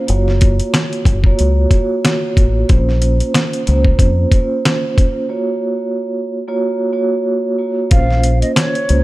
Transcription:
0.07 F#1 A#3 F4 F#4 C#5, closed hi-hat
0.28 snare
0.41 kick, closed hi-hat
0.60 closed hi-hat
0.74 snare, closed hi-hat
0.93 closed hi-hat
1.05 F#1, kick, closed hi-hat
1.24 A#3 F4 F#4 C#5, kick
1.39 C#2, closed hi-hat
1.70 A#3 F4 F#4 C#5, kick, closed hi-hat
2.05 snare, closed hi-hat
2.36 A1 A#3 F4 F#4 C#5, kick, closed hi-hat
2.68 A#1 A#3 C#4 F4 C5, kick, closed hi-hat
2.89 snare
3.02 closed hi-hat
3.20 closed hi-hat
3.34 snare, closed hi-hat
3.53 closed hi-hat
3.67 C#2 A#3 C#4 F4 C5, closed hi-hat
3.85 kick
3.99 F2, kick, closed hi-hat
4.32 A#3 C#4 F4 C5, kick, closed hi-hat
4.65 snare, closed hi-hat
4.98 kick, closed hi-hat
5.29 A#3 F4 F#4 C#5
6.48 A#3 F4 F#4 C#5
6.92 A#3 F4 F#4 C#5
7.58 A#3 F4 F#4 C#5
7.90 A#1 A#3 C#4 C5 F5, kick, closed hi-hat
8.11 snare
8.23 closed hi-hat
8.42 D#5, closed hi-hat
8.55 C#5, snare, closed hi-hat
8.75 closed hi-hat
8.89 C#2 A#3 C#4 F4 C5, closed hi-hat

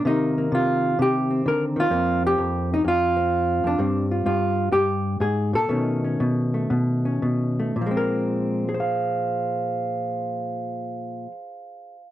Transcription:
0.05 C3 D#3 A#3 D#4
0.38 A#3
0.52 C3 F4
0.99 C3 G4
1.30 C4
1.46 D3 A#4
1.76 D#3 F4
1.90 F2 F3 A#3 C4
2.27 G4
2.38 F2
2.74 D#4
2.84 F2 F4
3.17 C4
3.64 F2 D4
3.79 G2 G3 C4
4.11 F4
4.26 G2 F4
4.72 G2 G4
5.20 G#2 G#4
5.53 A#2 A4
5.69 B2 D#3 A3 C#4
6.04 C#4
6.20 B2
6.54 A3
6.70 B2
7.05 C#4
7.22 B2
7.60 A3
7.76 A#2
7.81 F3
7.86 G#3
7.91 C4
7.97 A#4
8.69 G#4
8.74 C5
8.80 F5

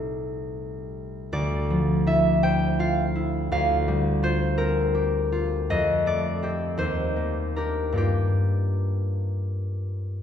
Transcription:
Already playing: C2 G3 A3 C4 D#4 A4 C5
1.32 D2 D5
1.70 F3
2.07 E4 E5
2.43 C5 G5
2.79 F4 F5
3.15 E4
3.52 D2 F5
3.88 G3
4.23 F4 C5
4.58 C4 A#4
4.95 G4
5.32 F4
5.70 F2 D#5
6.06 A3 D5
6.42 C4 G4
6.77 D#2 C5
7.16 A#3
7.56 D4 G4 A#4
7.92 G2 A#3 D4 F4
7.97 G4

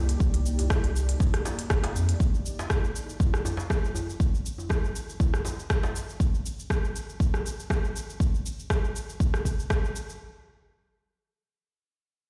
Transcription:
Already playing: C2 A#3 D#4 G4 D5
0.09 closed hi-hat, shaker
0.20 C2, kick, shaker
0.34 closed hi-hat, shaker
0.46 shaker
0.59 closed hi-hat, djembe tone, shaker
0.70 kick, cross-stick, djembe tone, shaker
0.84 closed hi-hat, shaker
0.96 shaker
1.09 closed hi-hat, shaker
1.20 kick, djembe tone, shaker
1.34 cross-stick, closed hi-hat, shaker
1.45 djembe slap, shaker
1.59 closed hi-hat, shaker
1.70 G1, kick, cross-stick, shaker
1.84 closed hi-hat, djembe slap, shaker
1.95 F2, shaker
2.09 closed hi-hat, shaker
2.20 kick, shaker
2.34 shaker
2.46 shaker
2.59 djembe slap, shaker
2.70 kick, cross-stick, djembe tone, shaker
2.84 shaker
2.96 shaker
3.09 shaker
3.20 kick, djembe tone, shaker
3.34 cross-stick, shaker
3.45 djembe tone, shaker
3.57 djembe slap, shaker
3.70 kick, cross-stick, shaker
3.85 shaker
3.95 djembe tone, shaker
4.10 shaker
4.20 kick, shaker
4.35 shaker
4.46 shaker
4.58 djembe tone, shaker
4.69 kick, cross-stick, djembe tone, shaker
4.85 shaker
4.96 shaker
5.09 shaker
5.20 kick, djembe tone, shaker
5.34 cross-stick, shaker
5.45 djembe slap, shaker
5.59 shaker
5.70 kick, cross-stick, shaker
5.83 djembe slap, shaker
5.96 shaker
6.09 shaker
6.20 kick, shaker
6.34 shaker
6.46 shaker
6.59 shaker
6.70 kick, cross-stick, shaker
6.85 shaker
6.96 shaker
7.10 shaker
7.20 kick, shaker
7.34 cross-stick, shaker
7.46 shaker
7.60 shaker
7.70 kick, cross-stick, shaker
7.85 shaker
7.96 shaker
8.10 shaker
8.20 kick, shaker
8.35 shaker
8.46 shaker
8.60 shaker
8.70 kick, cross-stick, shaker
8.85 shaker
8.96 shaker
9.09 shaker
9.20 kick, shaker
9.34 cross-stick, shaker
9.45 kick, shaker
9.60 shaker
9.70 kick, cross-stick, shaker
9.85 shaker
9.96 shaker
10.09 shaker

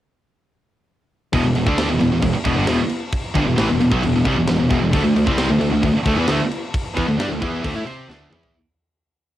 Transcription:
1.33 E1 E2 B2, kick, crash
1.44 E1 E2 B2
1.55 E1 E2 B2, crash
1.66 D2 D3 A3 D4, kick
1.78 snare, crash
1.88 E1 E2 B2
2.00 E1 E2 B2, crash
2.10 E1 E2 B2
2.22 E1 E2 B2, kick, crash
2.34 muted distorted electric guitar stroke, muted picked electric bass stroke
2.45 E1 E2 B2, kick, crash
2.56 G1 G2 D3
2.67 E1 E2 B2, snare, crash
2.89 crash
3.12 kick, crash
3.35 G1 G2 D3, kick, crash
3.46 E1 E2 B2
3.58 A1 A2 E3, snare, crash
3.69 E1 E2 B2
3.80 E1 E2 B2, crash
3.91 B1 B2 F#3, kick
4.03 E1 E2 B2, crash
4.13 E1 E2 B2
4.25 C2 C3 G3, kick, crash
4.36 E1 E2 B2
4.47 E1 E2 B2, snare, crash
4.58 E1 E2 B2
4.70 E1 E2 B2, kick, crash
4.81 E1 E2 B2
4.93 D2 D3 A3, kick, crash
5.03 D2 D3 A3
5.15 D2 D3 A3, crash
5.26 C2 C3 G3 C4, kick
5.38 snare, crash
5.49 D2 D3 A3
5.59 D2 D3 A3, crash
5.71 D2 D3 A3
5.82 D2 D3 A3, kick, crash
5.94 muted picked electric bass stroke, muted distorted electric guitar stroke
6.05 D2 D3 A3, kick, crash
6.17 E2 E3 B3
6.28 D2 D3 A3, snare, crash
6.51 crash
6.74 kick, crash
6.97 E2 E3 B3, kick, crash
7.08 D2 D3 A3
7.17 G2 G3 D4, snare, crash
7.29 D2 D3 A3
7.42 E2 E3 B3 E4, kick, crash
7.64 D2 D3 A3, kick, crash
7.74 A2 A3 E4
7.86 C3 C4 G4 C5, crash
8.08 D2 D3 A3 D4, snare
8.30 E2 E3, mid tom
8.34 B3 E4
8.43 floor tom

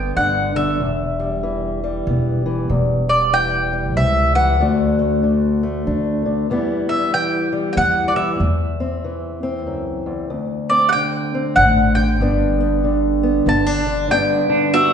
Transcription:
Already playing: G1 G2 D3 B3 G5
0.17 G1 D4 F#5
0.55 D3 E5
0.80 E1 E2
1.20 G3
1.43 E3
1.84 G3
2.07 E1 B3
2.46 E3
2.69 E1 E2
3.09 G3 D5
3.33 E3 G5
3.73 G3
3.96 C#2 C4 E5
4.35 E3 F#5
4.60 D2 D3 A3 D4 F#4
4.99 A3
5.23 D3
5.63 A3
5.87 D2 D4
6.26 D3
6.50 E2 E3 G3 B3 E4
6.89 G3 E5
7.14 E3 G5
7.52 G3
7.73 E2 G5
7.77 B3 F#5
8.08 D5
8.16 E3 E5
8.40 E2
8.80 C4
9.04 E3
9.43 C4
9.67 C#2 F#2
10.06 E2
10.30 D2
10.70 C4 D5
10.89 F#5 G5
10.94 D3
11.35 C4
11.56 A1 D4 F#5
11.95 D3 G5
12.20 G1 G2 D3 B3 D4
12.60 B3
12.84 D3
13.23 B3
13.46 G1 B3 A5
13.66 D4
13.86 D3
14.10 G2 D3 B3 D4 B4 G5
14.49 D3 D4
14.74 B3 F#4 E5

